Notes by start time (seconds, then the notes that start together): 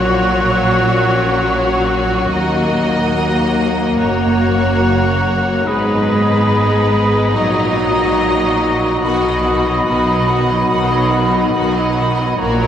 Already playing: A#1 A#2 F#3 C#4 F#4 C#5 F#5 C#6
2.29 D#2 A#3 D#5 A#5
3.98 F#1 F#2 F#3 F#4 C#5 F#5
5.66 G#1 G#2 G#3 B3 D#4 G#4 B4 D#5 B5
7.34 A#1 A#2 F#3 D#4 F#4 D#5 A#5
9.02 B1 B2 D#3 F#3 D#4 F#4 D#5 F#5 B5
9.22 F#3 D#4 D#5
9.43 D#3 F#4 F#5
9.64 F#3 D#4 D#5
9.85 B1 B2 D#3 F#4 F#5
10.05 F#3 D#4 D#5
10.27 D#3 F#4 F#5
10.48 F#3 D#4 D#5
10.68 B1 B2 D#3 F#4 F#5
10.88 F#3 D#4 D#5
11.09 D#3 F#4 F#5
11.31 F#3 D#4 D#5
11.53 B1 B2 D#3 F#4 F#5
11.74 F#3 D#4 D#5
11.96 D#3 F#4 F#5
12.18 F#3 D#4 D#5
12.38 A#1 A#2 F#3 A#3 F#4 A#4 C#5 A#5
12.58 F#3 A#4 C#5